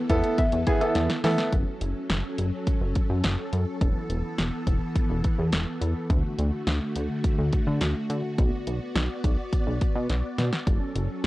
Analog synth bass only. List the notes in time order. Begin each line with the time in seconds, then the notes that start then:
0.10 E2
0.53 E2
0.81 E3
0.96 E2
1.24 E3
1.53 F#1
1.81 F#1
2.10 F#1
2.38 F#1
2.81 F#1
3.10 F#2
3.24 F#1
3.53 F#2
3.81 E1
4.10 E1
4.38 E1
4.67 E1
5.10 E1
5.38 E2
5.53 E1
5.81 E2
6.10 D2
6.38 D2
6.67 D2
6.96 D2
7.38 D2
7.67 D3
7.81 D2
8.10 D3
8.38 B1
8.67 B1
8.96 B1
9.24 B1
9.67 B1
9.96 B2
10.10 B1
10.38 B2
10.67 F#1
10.95 F#1